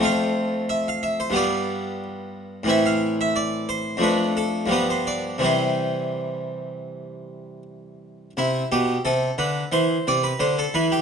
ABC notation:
X:1
M:4/4
L:1/16
Q:1/4=89
K:C
V:1 name="Harpsichord"
f4 e f e c d4 z4 | e f2 e d2 c2 B2 A2 B c d2 | c12- c2 z2 | E2 G2 A2 B2 c2 d B c A B G |]
V:2 name="Harpsichord" clef=bass
[F,,A,CF]8 [G,,G,B,F]8 | [A,,E,CE]8 [F,,F,A,D]4 [G,,F,G,B,]4 | [C,E,G,C]16 | C,2 B,,2 C,2 D,2 E,2 C,2 D,2 E,2 |]